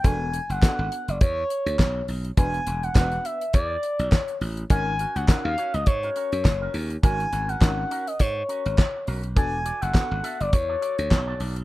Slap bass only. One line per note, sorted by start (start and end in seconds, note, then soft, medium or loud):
0.05 0.39 E1 loud
0.49 0.59 F#1 medium
0.79 0.88 G#1 medium
1.08 1.18 F#1 medium
1.21 1.43 E2 medium
1.66 1.76 D2 medium
1.79 2.01 B1 medium
2.08 2.30 B1 medium
2.37 2.59 E1 loud
2.67 2.89 E1 medium
2.95 3.17 E1 loud
3.54 3.76 E2 loud
3.99 4.09 B1 medium
4.41 4.63 A1 medium
4.70 5.05 G#1 loud
5.16 5.25 C#2 medium
5.45 5.55 D#2 medium
5.74 5.84 C#2 medium
5.87 6.09 G#2 medium
6.32 6.46 F#2 medium
6.45 6.67 F#1 medium
6.74 6.96 D#2 loud
7.03 7.25 G#1 medium
7.32 7.54 G#1 loud
7.62 7.84 G#1 medium
8.20 8.42 G#2 medium
8.66 8.75 G#1 loud
9.08 9.36 B1 medium
9.36 9.71 E1 loud
9.82 9.92 F#1 medium
10.11 10.21 G#1 medium
10.40 10.50 F#1 medium
10.53 10.75 E2 medium
10.99 11.08 D2 medium
11.11 11.33 B1 loud
11.40 11.62 B1 medium